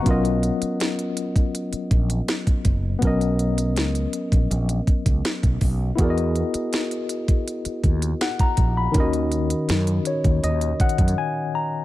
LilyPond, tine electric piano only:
\new Staff \with { instrumentName = "Tine electric piano" } { \time 4/4 \key ces \major \tempo 4 = 81 << { ges''16 r2. r8. | r1 | r2. fis''16 ais''8 b''16~ | b''16 r4 r16 des''8 ees''8 ges''8 aes''8 bes''8 | } \\ { <fis b cis' eis' ais' dis''>1 | <fis b cis' ais' dis''>1 | <b e' fis' gis' ais' d'' dis''>1 | <ees des' f' ges' bes' ees''>1 | } >> }